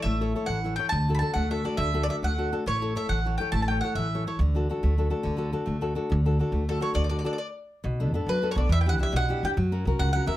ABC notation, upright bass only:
X:1
M:6/8
L:1/16
Q:3/8=139
K:D
V:1 name="Upright bass" clef=bass
A,,,6 A,,,6 | D,,6 D,,6 | D,,6 D,,6 | A,,,6 A,,,6 |
A,,,6 A,,,6 | D,,6 D,,6 | D,,6 D,,6 | D,,6 D,,6 |
D,,6 z6 | [K:Bm] B,,,4 F,, z F,,4 B,,,2 | E,,4 B,,, z B,,,4 E,,2 | F,,4 C,, z C,,4 E,,2 |]